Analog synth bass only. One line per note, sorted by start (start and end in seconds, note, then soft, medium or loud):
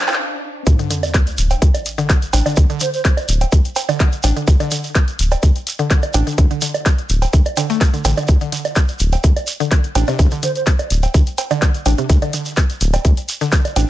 0.67 0.75 D2 loud
1.38 1.54 D1 medium
1.62 1.70 D2 medium
2.33 2.41 A1 medium
2.57 2.65 D2 loud
3.28 3.44 D1 medium
3.52 3.61 D2 medium
4.24 4.32 A1 loud
4.48 4.56 D2 loud
5.19 5.35 D1 medium
5.43 5.51 D2 medium
6.14 6.22 A1 loud
6.38 6.46 D2 loud
7.10 7.25 D1 medium
7.33 7.41 D2 medium
8.05 8.13 A1 loud
8.29 8.37 D2 loud
9.00 9.16 D1 medium
9.24 9.32 D2 medium
9.95 10.03 A1 medium
10.19 10.27 D2 loud
10.91 11.06 D1 medium
11.14 11.22 D2 medium
11.86 11.94 A1 medium
12.10 12.18 D2 loud
12.81 12.97 D1 medium
13.05 13.13 D2 medium
13.76 13.84 A1 medium